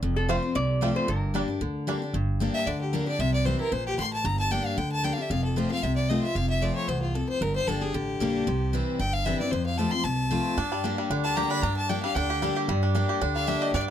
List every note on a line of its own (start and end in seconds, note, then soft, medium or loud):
0.02 0.36 F1 medium
0.02 0.53 F2 loud
0.16 0.28 A4 medium
0.29 0.42 F3 medium
0.29 0.35 A3 medium
0.29 0.42 A3 medium
0.29 0.35 C4 medium
0.29 0.43 C4 medium
0.29 0.35 F4 medium
0.29 0.41 F4 loud
0.29 0.56 C5 medium
0.42 0.55 C4 soft
0.42 0.54 F4 medium
0.55 0.89 C2 medium
0.55 1.06 C3 medium
0.55 0.93 D5 loud
0.81 1.07 F3 medium
0.81 1.07 A3 loud
0.81 0.88 A3 medium
0.81 1.07 C4 loud
0.81 0.88 C4 medium
0.81 1.07 F4 loud
0.81 0.88 F4 medium
0.96 1.09 C5 medium
1.08 1.41 G1 loud
1.08 1.59 G2 loud
1.08 1.83 A#4 medium
1.34 1.48 G3 medium
1.34 1.41 G3 medium
1.34 1.48 A#3 medium
1.34 1.48 D4 medium
1.34 1.38 D4 medium
1.34 1.47 G4 medium
1.48 1.61 D4 soft
1.48 1.60 G4 medium
1.61 1.94 D2 medium
1.61 2.11 D3 loud
1.87 2.01 G3 medium
1.87 1.94 G3 medium
1.87 2.01 A#3 loud
1.87 2.01 D4 medium
1.87 1.91 D4 medium
1.87 2.01 G4 loud
2.02 2.14 D4 soft
2.02 2.14 G4 medium
2.14 2.47 G1 loud
2.14 2.64 G2 loud
2.40 2.65 G3 medium
2.40 2.66 A#3 medium
2.40 2.66 D4 loud
2.40 2.66 G4 loud
2.54 2.68 E5 loud
2.66 3.00 D2 medium
2.66 3.17 D3 medium
2.66 2.80 D5 medium
2.81 2.95 G4 medium
2.93 3.06 G3 medium
2.93 3.07 A#3 medium
2.93 3.07 D4 loud
2.93 3.06 G4 loud
2.93 3.07 A#4 medium
3.07 3.20 D4 medium
3.07 3.19 G4 medium
3.07 3.21 D5 medium
3.19 3.53 C2 loud
3.19 3.70 C3 loud
3.19 3.33 E5 loud
3.34 3.47 D5 medium
3.45 3.59 E3 medium
3.45 3.60 G3 medium
3.45 3.60 C4 loud
3.45 3.58 E4 medium
3.45 3.59 C5 medium
3.59 3.72 C4 soft
3.59 3.71 E4 medium
3.59 3.74 A#4 loud
3.72 3.94 A#1 medium
3.72 3.97 A#2 loud
3.72 3.86 C5 medium
3.86 3.94 G4 loud
3.98 4.21 A1 medium
3.98 4.24 A2 medium
3.98 4.12 C6 medium
4.13 4.27 A5 loud
4.24 4.58 G1 loud
4.24 4.75 G2 loud
4.24 4.39 A#5 loud
4.40 4.53 A5 loud
4.51 4.76 G3 medium
4.51 4.77 A#3 medium
4.51 4.77 D4 loud
4.51 4.77 G4 medium
4.51 4.68 G5 medium
4.66 4.79 F5 medium
4.77 5.11 D2 medium
4.77 5.28 D3 medium
4.77 4.91 G5 medium
4.92 5.06 A5 loud
5.03 5.17 G3 medium
5.03 5.18 A#3 medium
5.03 5.18 D4 loud
5.03 5.17 G4 loud
5.03 5.15 G5 medium
5.13 5.23 F5 medium
5.18 5.31 D4 soft
5.18 5.30 G4 medium
5.18 5.32 E5 medium
5.30 5.63 F1 loud
5.30 5.81 F2 loud
5.30 5.44 F5 loud
5.44 5.58 A4 medium
5.56 5.70 F3 medium
5.56 5.70 A3 medium
5.56 5.71 C4 medium
5.56 5.69 F4 loud
5.56 5.70 C5 medium
5.70 5.84 C4 soft
5.70 5.83 F4 medium
5.70 5.84 F5 loud
5.83 6.16 C2 medium
5.83 6.34 C3 loud
5.83 5.95 E5 loud
5.96 6.10 D5 medium
6.09 6.23 F3 medium
6.09 6.23 A3 medium
6.09 6.24 C4 loud
6.09 6.22 F4 loud
6.09 6.22 D#5 medium
6.23 6.36 C4 soft
6.23 6.35 F4 medium
6.23 6.37 E5 medium
6.35 6.69 F1 loud
6.35 6.86 F2 loud
6.35 6.49 F5 loud
6.50 6.64 E5 loud
6.62 6.87 F3 medium
6.62 6.87 A3 medium
6.62 6.88 C4 medium
6.62 6.88 F4 medium
6.62 6.75 D5 medium
6.75 6.90 C#5 medium
6.88 7.21 C2 medium
6.88 7.14 E2 loud
6.88 7.01 C5 medium
7.02 7.17 F4 medium
7.15 7.40 F2 medium
7.15 7.29 A4 medium
7.29 7.43 C5 loud
7.41 7.58 G1 loud
7.41 7.92 G2 loud
7.41 7.55 A#4 medium
7.56 7.69 C5 loud
7.67 7.90 G1 medium
7.67 7.81 G3 medium
7.67 7.81 A#3 medium
7.67 7.82 D4 medium
7.67 7.80 G4 loud
7.67 7.83 A4 medium
7.81 7.94 D4 medium
7.81 7.94 G4 medium
7.81 7.96 G#4 medium
7.94 8.17 A1 medium
7.94 8.45 D3 loud
7.94 8.74 G4 medium
8.20 8.43 A#1 medium
8.20 8.46 G3 medium
8.20 8.46 A#3 loud
8.20 8.46 D4 loud
8.20 8.47 G4 medium
8.47 8.80 C2 loud
8.47 8.97 C3 loud
8.73 8.98 E3 medium
8.73 8.99 G3 medium
8.73 8.99 C4 medium
8.73 8.99 E4 loud
8.99 9.33 G1 medium
8.99 9.50 G2 loud
8.99 9.15 G5 loud
9.13 9.27 F5 loud
9.25 9.39 E3 loud
9.25 9.40 G3 loud
9.25 9.40 C4 medium
9.25 9.39 E4 medium
9.25 9.39 E5 loud
9.39 9.53 C4 soft
9.39 9.52 E4 medium
9.39 9.53 D5 medium
9.51 9.85 F2 loud
9.51 10.03 F2 loud
9.51 9.65 C5 medium
9.66 9.80 F5 loud
9.78 9.92 F3 medium
9.78 9.92 A3 medium
9.78 9.93 C4 medium
9.78 9.91 F4 loud
9.78 9.93 A5 medium
9.91 10.05 C4 soft
9.91 10.04 F4 medium
9.91 10.06 C6 loud
10.04 10.38 C2 medium
10.04 10.55 C3 medium
10.04 10.84 A5 loud
10.31 10.56 F3 medium
10.31 10.57 A3 loud
10.31 10.57 C4 medium
10.31 10.57 F4 medium
10.57 10.91 G2 loud
10.57 11.08 G2 loud
10.57 10.84 D4 medium
10.72 10.98 G3 medium
10.84 11.09 G3 medium
10.84 11.09 A#3 medium
10.84 11.11 D4 medium
10.84 11.10 D4 medium
10.84 11.10 G4 loud
10.98 11.24 G3 medium
11.10 11.44 D2 medium
11.10 11.61 D3 loud
11.10 11.50 D4 medium
11.24 12.03 G3 medium
11.24 11.37 A5 loud
11.36 11.62 G3 loud
11.36 11.62 A#3 loud
11.36 11.62 D4 loud
11.36 12.30 G4 medium
11.36 11.63 G4 loud
11.36 11.52 A#5 loud
11.50 11.63 D4 medium
11.50 11.64 B5 loud
11.62 11.96 G2 loud
11.62 12.14 G2 loud
11.62 11.89 D4 medium
11.62 11.76 A#5 medium
11.77 11.91 A5 loud
11.89 12.03 G3 medium
11.89 12.03 A#3 medium
11.89 12.16 D4 medium
11.89 12.04 D4 medium
11.89 12.02 G4 medium
11.89 12.02 G5 medium
12.03 12.42 G3 medium
12.03 12.16 D4 medium
12.03 12.16 G4 medium
12.03 12.16 F5 loud
12.15 12.49 D2 medium
12.15 12.67 D3 loud
12.15 12.83 D4 medium
12.15 12.56 G5 loud
12.30 12.56 G4 medium
12.42 12.67 G3 loud
12.42 12.68 G3 medium
12.42 12.68 A#3 medium
12.42 12.68 D4 loud
12.42 12.68 G4 loud
12.56 13.09 G4 medium
12.68 13.02 G2 loud
12.68 13.19 G2 loud
12.68 13.35 G3 medium
12.83 12.94 D4 medium
12.95 13.20 G3 medium
12.95 13.20 A#3 medium
12.95 13.20 D4 medium
12.95 13.21 D4 medium
12.95 13.21 G4 loud
13.09 13.61 G4 medium
13.21 13.55 D2 medium
13.21 13.72 D3 loud
13.21 13.47 D4 medium
13.35 13.88 G3 medium
13.35 13.49 F5 loud
13.47 13.73 G3 loud
13.47 13.73 A#3 medium
13.47 13.73 D4 medium
13.47 13.73 D4 loud
13.47 13.73 G4 loud
13.47 13.63 E5 medium
13.62 13.90 G4 medium
13.62 13.73 D#5 loud
13.73 13.90 G2 loud
13.73 13.90 D4 medium
13.73 13.82 D5 loud